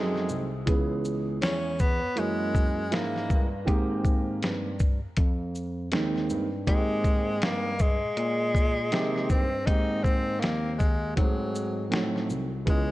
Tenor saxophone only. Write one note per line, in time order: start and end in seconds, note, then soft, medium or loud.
0.00 0.48 G#3 medium
1.42 1.82 C#4 loud
1.80 2.20 B3 loud
2.19 2.95 G#3 medium
2.93 3.52 A#3 medium
6.68 7.45 G#3 loud
7.43 7.83 A#3 loud
7.81 9.30 G#3 loud
9.31 9.68 C4 medium
9.66 10.05 D#4 loud
10.03 10.42 C4 loud
10.40 10.75 A#3 medium
10.75 11.16 G#3 medium
10.75 10.80 A#3 medium
11.16 11.88 F#3 medium
12.69 12.91 G#3 medium